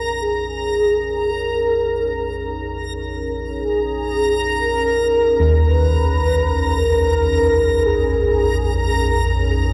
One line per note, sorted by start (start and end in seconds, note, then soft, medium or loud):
0.00 9.73 A#1 medium
0.00 9.73 F2 medium
0.00 1.32 C#3 medium
0.00 9.73 C#4 medium
0.00 9.73 D#4 medium
0.00 9.73 G#4 medium
0.00 0.23 A#4 medium
0.00 9.73 C#5 medium
0.00 9.73 A#5 medium
0.22 1.32 G#4 medium
1.30 2.95 A#4 loud
3.50 4.55 G#4 medium
4.60 5.70 A#4 loud
5.40 9.73 D#2 medium
5.68 6.79 B4 loud
6.77 7.87 A#4 loud
7.86 9.50 G#4 medium